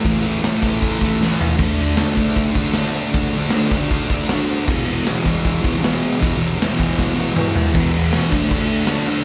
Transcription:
<<
  \new Staff \with { instrumentName = "Distorted electric guitar" } { \clef bass \time 4/4 \key d \lydian \tempo 4 = 156 <a, e a>8 <e a>8 <a, e a>8 <e a>4 <e a>8 <a, e a>4 | <d a d'>8 <a d'>8 <d a d'>8 <a d'>4 <a d'>8 <d a d'>4 | <d a d'>8 <a d'>8 <d a d'>8 <a d'>4 <a d'>8 <d a d'>4 | <e, b, e>8 <b, e>8 <e, b, e>8 <b, e>4 <b, e>8 <e, b, e>4 |
<e, b, e>8 <b, e>8 <e, b, e>8 <b, e>4 <b, e>8 <e, b, e>4 | <e, b, e>8 <b, e>8 <e, b, e>8 <d a d'>8 <d a d'>4 <d a d'>8 <a d'>8 | }
  \new DrumStaff \with { instrumentName = "Drums" } \drummode { \time 4/4 <bd cymr>16 sn16 cymr8 <cymr sn>8 <bd cymr>8 <bd cymr>8 <bd cymr>8 sn8 tomfh8 | <cymc bd>16 sn16 cymr8 <cymr sn>8 <bd cymr>8 <bd cymr>8 <bd cymr>8 <cymr sn>8 cymr8 | <bd cymr>16 sn16 cymr8 <cymr sn>8 <bd cymr>8 <bd cymr>8 <bd cymr>8 <cymr sn>8 cymr8 | <cymc bd>8 cymr8 <cymr sn>8 <bd cymr>8 <bd cymr>8 <bd cymr>8 <cymr sn>8 cymr8 |
<bd cymr>8 cymr8 <cymr sn>8 <bd cymr>8 <bd sn>4 toml8 tomfh8 | <cymc bd>8 cymc8 <cymc sn>8 <cymc bd>8 <cymc bd>8 cymc8 <cymc sn>8 cymc8 | }
>>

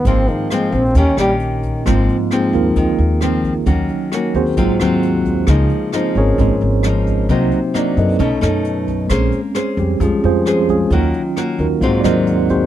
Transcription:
<<
  \new Staff \with { instrumentName = "Tine electric piano" } { \time 4/4 \key aes \major \tempo 4 = 133 << { <c' aes' bes' f''>8 <c' aes' bes' f''>4. <des' g' bes' ees''>2 | <f bes c'>4 <aes ees' f' aes'>8 <ees' bes'>4. r4 | <ges des' ees'>4 <bes ees' ges' bes'>8 <c' ges' aes' c''>4. r4 | <aes ees' f' aes'>4 <c' c''>8 <des' aes' bes' des''>4. r4 |
<c' ees' ges' c''>4 <d' d''>8 <ees' a' ces'' ees''>4. r4 | r4. <g g'>8 <aes des' f' aes'>8 <c' f' aes' c''>4 <aes des' f' aes'>8 | r4. <bes ees' ges' bes'>8 <c' ges' aes' c''>8 <ees' bes' c'' d'' ees''>4 <c' ges' aes' c''>8 | } \\ { r1 | <bes c' f'>4. <bes c' f'>8 r2 | <ges des'>4. r8 <ges bes c' f'>2 | r4. <f bes ees'>8 r2 |
<ges bes ees'>2 <a cis' dis'>4. r8 | <aes c' des'>8 r4. <aes c' des'>8 r4. | <ges des' f'>4. r8 <ges bes c' f'>4. r8 | } >> }
  \new Staff \with { instrumentName = "Nylon-string guitar" } { \time 4/4 \key aes \major << { <f bes c'>4 <f bes c'>8 r8 <bes des' g'>8 <bes des' g'>4. | <f bes c'>8 r8 <f bes c'>4. r8 <f bes c'>8 r8 | <bes des' ges'>4 <bes des' ges'>8 r8 <ges c' f'>8 <ges c' f'>4. | <f bes ees'>4 <f bes ees'>4. r8 <f bes ees'>4 |
<ges bes ees'>8 r8 <ges bes ees'>4 <a cis' dis'>8 <a cis' dis'>4. | <des' aes' c''>8 r8 <des' aes' c''>2 <des' aes' c''>8 r8 | <bes des' ges'>8 r8 <bes des' ges'>8 r8 <ges c' f'>8 <ges c' f'>4. | } \\ { aes,2 ees2 | aes,2 ees2 | ees2 aes,2 | des2 aes,2 |
c2 b,2 | bes2 f2 | ees2 aes,2 | } >> }
  \new Staff \with { instrumentName = "Trombone" } { \time 4/4 \key aes \major c'8 ees8 aes8 c'8 des'8 g8 r4 | r1 | r1 | r1 |
r1 | r1 | r1 | }
  \new Staff \with { instrumentName = "Upright bass" } { \clef bass \time 4/4 \key aes \major aes,,8 r4 bes,,8 ees,16 r16 bes,,4. | aes,,8 r4 ees,8 ees,16 r16 ees,4. | ees,8 r4 ees,8 aes,,16 r16 ees,4. | des,8 r4 aes,,8 aes,,16 r16 aes,,4. |
c,8 r4 ges,8 b,,16 r16 fis,4. | bes,,8 r4 f,8 f,16 r16 f,4. | ees,8 r4 ees,8 aes,,16 r16 ees,4. | }
  \new DrumStaff \with { instrumentName = "Drums" } \drummode { \time 4/4 <hh bd>8 hh8 <hh ss>8 <hh bd>8 <hh bd>8 <hh ss>8 hh8 <hh bd>8 | <hh bd ss>8 hh8 <hh ss>8 <hh bd>8 <hh bd>8 hh8 <hh ss>8 <hh bd>8 | <hh bd>8 hh8 <hh ss>8 <hh bd>8 <hh bd>8 <hh ss>8 hh8 <hh bd>8 | <hh bd ss>8 hh8 <hh ss>8 <hh bd>8 <hh bd>8 hh8 <hh ss>8 <hh bd>8 |
<hh bd>8 hh8 <hh ss>8 <hh bd>8 <hh bd>8 <hh ss>8 hh8 <hh bd>8 | <hh bd ss>8 hh8 <hh ss>8 <hh bd>8 <hh bd>8 hh8 <hh ss>8 <hh bd>8 | <hh bd>8 hh8 <hh ss>8 <hh bd>8 <hh bd>8 <hh ss>8 hh8 <hh bd>8 | }
>>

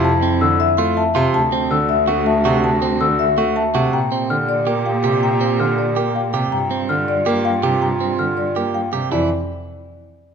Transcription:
<<
  \new Staff \with { instrumentName = "Celesta" } { \time 7/8 \key f \major \tempo 4 = 162 a''8 r8 e'''8 r4 e''8 r8 | a''8 r8 e'''8 r4 e''8 r8 | a''8 r8 e'''8 r4 e''8 r8 | bes''8 r8 f'''8 r4 f''8 r8 |
bes''8 r8 f'''8 r4 f''8 r8 | bes''8 r8 f'''8 r4 f''8 r8 | bes''8 r8 f'''8 r4 f''8 r8 | a''8 r2. | }
  \new Staff \with { instrumentName = "Marimba" } { \time 7/8 \key f \major a''8 r4 e''8 r8 a''8 r8 | a''8 r4 e''8 r8 a''8 r8 | a''8 r4 e''8 r8 a''8 r8 | g''8 r4 d''8 r8 g''8 r8 |
g''8 r4 d''8 r8 g''8 r8 | g''8 r4 d''8 r8 g''8 r8 | g''8 r4 d''8 r8 g''8 r8 | d''8 r2. | }
  \new Staff \with { instrumentName = "Clean electric guitar" } { \time 7/8 \key f \major r8 c'8 r4 f'8 r8 f'8 | r8 c'8 r4 fis'8 r8 fis'8 | r8 c'8 r4 fis'8 r8 fis'8 | r8 c'8 r4 g'8 r8 g'8 |
r8 c'8 r4 g'8 r8 g'8 | r8 c'8 r4 g'8 r8 g'8 | r8 c'8 r4 g'8 r8 g'8 | e'8 r2. | }
  \new Staff \with { instrumentName = "Clarinet" } { \time 7/8 \key f \major e'2. r8 | fis'2.~ fis'8~ | fis'2. r8 | g'2.~ g'8~ |
g'2. r8 | f'2.~ f'8~ | f'2. r8 | r2. r8 | }
  \new Staff \with { instrumentName = "Grand piano" } { \clef bass \time 7/8 \key f \major r4 d8 r8 a8 r8 c8 | r4 d8 r8 a8 r8 c8 | r4 d8 r8 a8 r8 c8 | r4 d8 r8 bes8 r8 c8 |
r4 d8 r8 bes8 r8 c8 | r4 d8 r8 bes8 r8 c8 | r4 d8 r8 bes8 r8 c8 | e8 r2. | }
  \new Staff \with { instrumentName = "Cello" } { \clef bass \time 7/8 \key f \major f,2.~ f,8 | d,2.~ d,8~ | d,2.~ d,8 | bes,2.~ bes,8~ |
bes,2.~ bes,8 | g,2.~ g,8~ | g,2.~ g,8 | f,8 r2. | }
>>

